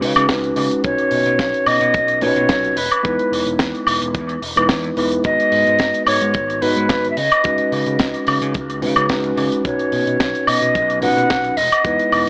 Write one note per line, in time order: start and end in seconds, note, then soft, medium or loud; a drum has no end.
0.00 0.12 C#3 loud
0.00 0.26 G#3 medium
0.00 0.26 C#4 medium
0.00 0.26 D#4 medium
0.00 0.26 F#4 medium
0.00 0.26 B4 medium
0.00 open hi-hat loud
0.00 downlifter medium
0.16 0.25 C#3 loud
0.16 closed hi-hat medium
0.16 high woodblock medium
0.29 0.49 C#2 loud
0.29 0.81 G#3 medium
0.29 0.81 C#4 medium
0.29 0.81 D#4 medium
0.29 0.81 F#4 medium
0.29 0.81 B4 loud
0.29 kick loud
0.29 snare loud
0.29 open hi-hat medium
0.44 closed hi-hat medium
0.56 0.67 C#3 loud
0.56 open hi-hat loud
0.71 closed hi-hat medium
0.83 0.95 B1 loud
0.83 2.18 A#2 medium
0.83 2.18 C#4 medium
0.83 2.19 D#4 medium
0.83 2.19 F#4 medium
0.83 2.19 B4 loud
0.83 1.69 C#5 loud
0.83 kick loud
0.83 closed hi-hat medium
0.98 closed hi-hat medium
1.11 1.22 B2 medium
1.11 open hi-hat loud
1.26 1.35 B2 medium
1.26 closed hi-hat medium
1.39 1.49 B1 medium
1.39 kick loud
1.39 snare loud
1.39 closed hi-hat medium
1.54 closed hi-hat medium
1.66 1.77 B2 medium
1.66 2.24 D#5 loud
1.66 open hi-hat loud
1.66 high woodblock medium
1.81 1.96 B2 medium
1.81 closed hi-hat medium
1.94 2.23 B1 medium
1.94 kick loud
1.94 closed hi-hat medium
2.08 closed hi-hat medium
2.21 2.75 A#2 loud
2.21 2.32 B2 loud
2.21 2.75 C#4 medium
2.21 2.75 D#4 medium
2.21 2.75 F#4 medium
2.21 2.75 B4 loud
2.21 2.79 C#5 loud
2.21 open hi-hat loud
2.36 2.45 B2 loud
2.36 closed hi-hat medium
2.49 2.69 B1 loud
2.49 kick loud
2.49 snare loud
2.49 closed hi-hat medium
2.65 closed hi-hat medium
2.77 2.87 E1 loud
2.77 3.60 B4 medium
2.77 open hi-hat loud
2.91 closed hi-hat medium
2.91 high woodblock medium
3.03 3.15 E2 loud
3.03 4.38 G#3 medium
3.03 4.38 B3 medium
3.03 4.39 D#4 medium
3.03 4.39 E4 medium
3.03 4.39 B4 loud
3.03 kick loud
3.03 closed hi-hat medium
3.19 closed hi-hat soft
3.32 3.42 E1 medium
3.32 open hi-hat loud
3.47 3.56 E1 medium
3.47 closed hi-hat medium
3.59 3.70 E2 medium
3.59 kick loud
3.59 snare loud
3.59 closed hi-hat medium
3.75 closed hi-hat medium
3.87 3.97 E1 medium
3.87 open hi-hat loud
3.87 high woodblock medium
4.02 4.16 E1 medium
4.02 closed hi-hat medium
4.14 4.34 E2 medium
4.14 kick loud
4.14 closed hi-hat medium
4.29 closed hi-hat medium
4.42 4.52 E1 medium
4.42 open hi-hat loud
4.56 4.71 E1 medium
4.56 4.94 G#3 medium
4.56 4.94 B3 medium
4.56 4.94 D#4 medium
4.56 4.94 E4 medium
4.56 4.94 B4 medium
4.56 closed hi-hat medium
4.56 high woodblock medium
4.69 4.89 E2 medium
4.69 kick loud
4.69 snare loud
4.69 open hi-hat medium
4.84 closed hi-hat medium
4.96 5.17 E1 medium
4.96 5.21 G#3 medium
4.96 5.21 B3 medium
4.96 5.21 D#4 medium
4.96 5.21 E4 medium
4.96 5.22 B4 medium
4.96 open hi-hat loud
5.12 closed hi-hat medium
5.23 5.35 G#1 loud
5.23 6.58 G#3 medium
5.23 6.59 B3 medium
5.23 6.59 D#4 medium
5.23 6.59 F#4 medium
5.23 6.59 B4 medium
5.23 6.03 D#5 loud
5.23 kick loud
5.23 closed hi-hat medium
5.40 closed hi-hat medium
5.52 5.62 G#2 medium
5.52 open hi-hat medium
5.67 5.76 G#2 medium
5.67 closed hi-hat medium
5.79 5.90 G#1 medium
5.79 kick loud
5.79 snare loud
5.79 closed hi-hat medium
5.94 closed hi-hat medium
6.07 6.17 G#2 medium
6.07 6.63 C#5 loud
6.07 open hi-hat loud
6.07 high woodblock medium
6.21 6.36 G#2 medium
6.21 closed hi-hat medium
6.34 6.64 G#1 medium
6.34 kick loud
6.34 closed hi-hat medium
6.50 closed hi-hat medium
6.62 6.72 G#2 loud
6.62 7.15 G#3 loud
6.62 7.15 B3 medium
6.62 7.16 D#4 medium
6.62 7.16 F#4 medium
6.62 7.10 B4 medium
6.62 7.16 B4 loud
6.62 open hi-hat loud
6.77 6.86 G#2 loud
6.77 closed hi-hat medium
6.89 7.10 G#1 loud
6.89 kick loud
6.89 snare loud
6.89 closed hi-hat medium
7.05 closed hi-hat medium
7.11 7.19 E5 medium
7.17 7.27 C#3 loud
7.17 7.72 D#5 medium
7.17 open hi-hat loud
7.32 closed hi-hat medium
7.32 high woodblock medium
7.44 7.55 C#2 loud
7.44 8.79 G#3 medium
7.44 8.79 C#4 medium
7.44 8.79 D#4 medium
7.44 8.79 F#4 medium
7.44 8.80 B4 loud
7.44 kick loud
7.44 closed hi-hat medium
7.58 closed hi-hat medium
7.72 7.82 C#3 medium
7.72 open hi-hat loud
7.86 7.96 C#3 medium
7.86 closed hi-hat soft
7.99 8.10 C#2 medium
7.99 kick loud
7.99 snare loud
7.99 closed hi-hat medium
8.14 closed hi-hat medium
8.27 8.38 C#3 medium
8.27 open hi-hat loud
8.27 high woodblock medium
8.42 8.56 C#3 medium
8.42 closed hi-hat medium
8.54 8.84 C#2 medium
8.54 kick loud
8.54 closed hi-hat medium
8.70 closed hi-hat medium
8.82 8.92 C#3 loud
8.82 9.06 G#3 medium
8.82 9.07 C#4 medium
8.82 9.07 D#4 medium
8.82 9.07 F#4 medium
8.82 9.07 B4 medium
8.82 open hi-hat loud
8.96 9.06 C#3 loud
8.96 closed hi-hat medium
8.96 high woodblock medium
9.09 9.30 C#2 loud
9.09 9.61 G#3 medium
9.09 9.62 C#4 medium
9.09 9.62 D#4 medium
9.09 9.62 F#4 medium
9.09 9.62 B4 loud
9.09 kick loud
9.09 snare loud
9.09 open hi-hat medium
9.24 closed hi-hat medium
9.37 9.48 C#3 loud
9.37 open hi-hat loud
9.52 closed hi-hat soft
9.64 9.75 B1 loud
9.64 10.99 A#2 medium
9.64 10.99 C#4 medium
9.64 10.99 D#4 medium
9.64 11.00 F#4 medium
9.64 11.00 B4 loud
9.64 10.49 C#5 medium
9.64 kick loud
9.64 closed hi-hat medium
9.79 closed hi-hat medium
9.92 10.03 B2 medium
9.92 open hi-hat medium
10.07 10.16 B2 medium
10.07 closed hi-hat medium
10.20 10.30 B1 medium
10.20 kick loud
10.20 snare loud
10.20 closed hi-hat medium
10.35 closed hi-hat medium
10.47 10.58 B2 medium
10.47 11.01 D#5 loud
10.47 open hi-hat loud
10.47 high woodblock medium
10.62 10.77 B2 medium
10.62 closed hi-hat medium
10.75 11.04 B1 medium
10.75 kick loud
10.75 closed hi-hat medium
10.90 closed hi-hat medium
11.02 11.56 A#2 loud
11.02 11.13 B2 loud
11.02 11.56 C#4 medium
11.02 11.56 D#4 medium
11.02 11.56 F#4 medium
11.02 11.56 B4 loud
11.02 11.59 F#5 loud
11.02 open hi-hat loud
11.17 11.26 B2 loud
11.17 closed hi-hat medium
11.30 11.50 B1 loud
11.30 kick loud
11.30 snare loud
11.30 closed hi-hat medium
11.44 closed hi-hat medium
11.57 11.68 E1 loud
11.57 12.29 D#5 loud
11.57 open hi-hat loud
11.72 closed hi-hat medium
11.72 high woodblock medium
11.84 11.95 E2 loud
11.84 12.29 G#3 medium
11.84 12.29 B3 medium
11.84 12.29 D#4 medium
11.84 12.29 E4 medium
11.84 12.29 B4 loud
11.84 kick loud
11.84 closed hi-hat medium
11.99 closed hi-hat medium
12.12 12.23 E1 medium
12.12 open hi-hat medium
12.12 high woodblock medium